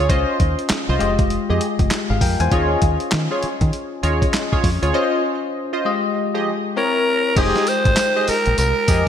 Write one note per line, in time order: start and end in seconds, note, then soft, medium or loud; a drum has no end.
0.00 0.15 G#4 medium
0.00 0.15 C#5 medium
0.09 0.24 C#2 loud
0.09 1.00 C#4 medium
0.09 0.38 F4 medium
0.09 0.98 F4 medium
0.09 0.38 C5 medium
0.09 1.00 C5 medium
0.09 0.38 D#5 loud
0.09 1.00 D#5 medium
0.09 kick loud
0.09 closed hi-hat medium
0.40 0.54 D#2 loud
0.40 kick medium
0.40 closed hi-hat medium
0.59 closed hi-hat medium
0.69 muted fingered electric bass stroke soft
0.69 snare loud
0.69 clap medium
0.69 closed hi-hat medium
0.89 0.98 C2 medium
0.89 1.06 F4 medium
0.89 1.06 C5 medium
0.89 1.06 D#5 medium
0.99 1.37 F1 loud
0.99 2.48 G#3 medium
0.99 2.48 F4 medium
0.99 1.89 G4 medium
0.99 1.90 D#5 medium
0.99 closed hi-hat medium
1.19 kick loud
1.19 closed hi-hat soft
1.30 closed hi-hat medium
1.49 1.58 F2 medium
1.49 1.66 G4 medium
1.49 1.66 G#4 medium
1.49 1.67 D#5 medium
1.61 closed hi-hat medium
1.79 1.88 F1 medium
1.79 kick medium
1.79 closed hi-hat medium
1.91 snare loud
1.91 clap medium
1.91 closed hi-hat medium
2.10 2.19 G#1 medium
2.10 2.21 G#4 medium
2.10 2.21 F5 medium
2.21 2.35 F2 medium
2.21 2.40 A#4 medium
2.21 2.39 G5 medium
2.21 kick medium
2.21 open hi-hat medium
2.40 2.49 E2 loud
2.40 2.69 C5 medium
2.40 2.69 G#5 medium
2.40 closed hi-hat medium
2.51 2.75 D#2 loud
2.51 4.00 C#4 medium
2.51 2.80 F4 medium
2.51 4.00 F4 medium
2.51 2.80 G#4 medium
2.51 4.01 G#4 medium
2.51 2.80 C#5 medium
2.51 4.01 D#5 medium
2.51 kick loud
2.51 closed hi-hat medium
2.82 2.96 D#2 loud
2.82 kick medium
2.82 closed hi-hat medium
3.00 closed hi-hat soft
3.12 3.27 D#3 medium
3.12 snare loud
3.12 clap medium
3.12 closed hi-hat medium
3.31 3.48 F4 medium
3.31 3.48 G#4 medium
3.31 3.48 C#5 medium
3.43 muted fingered electric bass stroke soft
3.43 closed hi-hat medium
3.61 3.70 D#3 loud
3.61 kick loud
3.61 closed hi-hat soft
3.73 closed hi-hat medium
4.03 4.26 D#2 medium
4.03 4.93 C#4 medium
4.03 4.25 F4 medium
4.03 4.93 F4 medium
4.03 4.25 G#4 medium
4.03 4.95 G#4 soft
4.03 4.25 C#5 medium
4.03 4.94 D#5 medium
4.03 closed hi-hat medium
4.22 kick medium
4.22 closed hi-hat medium
4.34 snare loud
4.34 clap medium
4.34 closed hi-hat medium
4.52 4.69 F4 medium
4.52 4.69 G#4 medium
4.52 4.69 C#5 medium
4.52 kick medium
4.64 4.78 F2 medium
4.64 kick medium
4.64 open hi-hat medium
4.82 4.91 D2 medium
4.82 4.93 F4 medium
4.82 4.99 G#4 medium
4.82 5.00 C#5 medium
4.82 closed hi-hat medium
4.94 5.85 C#4 medium
4.94 5.22 F4 medium
4.94 5.84 F4 medium
4.94 5.23 C5 medium
4.94 5.85 C5 medium
4.94 5.23 D#5 loud
4.94 5.85 D#5 medium
5.73 5.90 F4 medium
5.73 5.90 C5 medium
5.73 5.90 D#5 medium
5.85 6.76 G#3 medium
5.85 6.76 F4 medium
5.85 6.76 G4 medium
5.85 6.76 D#5 medium
6.34 6.51 F3 medium
6.34 6.51 G4 medium
6.34 6.51 G#4 medium
6.34 6.51 D#5 medium
6.76 7.37 C4 medium
6.76 7.37 E4 medium
6.76 7.37 A#4 medium
6.76 7.40 A#4 loud
6.76 7.37 C#5 medium
7.36 7.51 F1 loud
7.36 9.08 G#3 medium
7.36 9.08 D#4 medium
7.36 9.08 F4 medium
7.36 7.65 G4 loud
7.36 7.65 G#4 medium
7.36 7.70 G#4 loud
7.36 9.08 C5 medium
7.36 7.65 D#5 loud
7.36 9.08 G5 medium
7.36 kick loud
7.36 closed hi-hat medium
7.36 crash loud
7.56 snare medium
7.67 8.31 C5 loud
7.67 closed hi-hat medium
7.67 tambourine medium
7.85 7.94 G#1 loud
7.85 kick loud
7.85 closed hi-hat soft
7.97 snare loud
7.97 clap medium
7.97 closed hi-hat medium
7.97 tambourine loud
8.16 8.33 G4 medium
8.16 8.33 G#4 medium
8.16 8.33 D#5 medium
8.28 8.58 A#4 loud
8.28 muted fingered electric bass stroke soft
8.28 open hi-hat medium
8.28 tambourine medium
8.46 8.55 A#1 medium
8.46 closed hi-hat medium
8.58 8.72 C2 medium
8.58 9.08 A#4 loud
8.58 closed hi-hat medium
8.58 tambourine medium
8.88 9.03 F2 loud
8.88 9.08 G4 medium
8.88 9.08 G#4 medium
8.88 9.08 D#5 medium
8.88 kick loud
8.88 closed hi-hat medium
8.88 tambourine medium